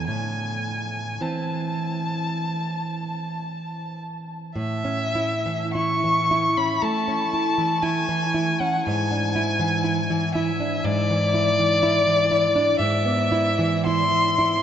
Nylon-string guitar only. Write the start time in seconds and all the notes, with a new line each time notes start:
0.08 A2
1.21 E3 C4
4.56 A2
4.85 C#4
5.15 E4
5.46 E3
5.75 E4
6.04 E3
6.31 E4
6.58 C#4
6.83 A3
7.08 C#4
7.33 E4
7.58 E3
7.83 E4
8.09 E3
8.34 E4
8.60 C#4
8.87 G#2
9.11 D4
9.36 E4
9.60 E3
9.84 E4
10.10 E3
10.35 E4
10.60 D4
10.84 G#2
11.10 E3
11.34 E4
11.60 E3
11.83 E4
12.07 E3
12.31 E4
12.56 D4
12.80 G#2
13.05 B3
13.32 E4
13.59 E3
13.87 E4
14.12 E3
14.39 E4